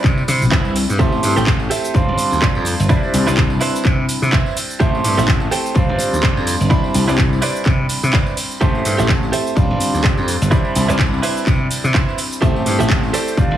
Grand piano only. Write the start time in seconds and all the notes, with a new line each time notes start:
Already playing: G3 C4 D4 E4 B5
0.99 A3 C4 E4 G4 C5
1.94 G3 C4 D4 F4 C5
2.89 G3 C4 D4 E4 B5
4.79 A3 C4 E4 G4 C5
5.74 G3 C4 D4 F4 C5
6.70 G3 C4 D4 E4 B5
8.61 A3 C4 E4 G4 C5
9.55 G3 C4 D4 F4 C5
10.51 G3 C4 D4 E4 B5
12.41 A3 C4 E4 G4 C5
13.37 G3 C4 D4 F4 C5